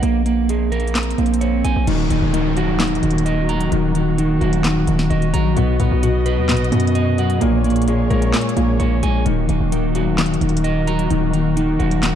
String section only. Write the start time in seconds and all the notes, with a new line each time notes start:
1.87 D#3 A#3 F#4
5.57 B3 D#5
7.41 A#3 G#4 C#5
9.26 D#3 F#4